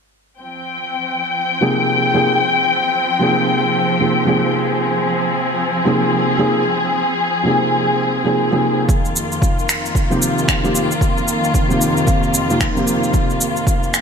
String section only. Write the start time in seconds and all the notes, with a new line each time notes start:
0.39 F3 C4 G5
4.64 G#4
8.89 F2 D#3 A#3 F4